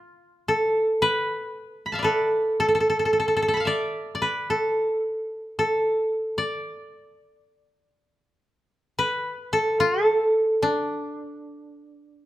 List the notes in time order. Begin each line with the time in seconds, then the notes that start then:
Already playing: F4
0.48 A4
1.02 B4
1.86 B5
1.92 E5 F5 A5
1.99 B4 D5
2.04 A4
2.60 A4
2.68 A4
2.75 A4
2.80 A4
2.90 A4
2.99 A4
3.05 A4
3.13 A4
3.20 A4
3.28 A4
3.37 A4
3.42 A4
3.48 A4
3.54 A5 B5
3.60 F5
3.65 D5 E5
4.15 D5
4.22 B4
4.50 A4
5.59 A4
6.38 D5
8.99 B4
9.53 A4
9.80 F4
10.05 A4
10.62 D4